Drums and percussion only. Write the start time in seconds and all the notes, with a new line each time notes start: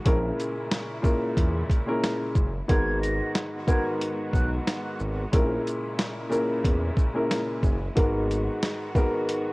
0.06 kick, closed hi-hat
0.40 closed hi-hat, shaker
0.71 snare, closed hi-hat
1.04 kick, shaker
1.37 kick, closed hi-hat
1.70 kick, closed hi-hat, shaker
2.04 snare, closed hi-hat
2.35 kick, shaker
2.69 kick, closed hi-hat
3.03 closed hi-hat, shaker
3.35 snare, closed hi-hat
3.68 kick, shaker
4.01 closed hi-hat
4.33 kick, shaker
4.67 snare, closed hi-hat
4.99 shaker
5.33 kick, closed hi-hat
5.67 closed hi-hat, shaker
5.99 snare, closed hi-hat
6.32 shaker
6.65 kick, closed hi-hat
6.97 kick, shaker
7.31 snare, closed hi-hat
7.63 kick, shaker
7.97 kick, closed hi-hat
8.31 closed hi-hat, shaker
8.63 snare, closed hi-hat
8.95 kick, shaker
9.29 closed hi-hat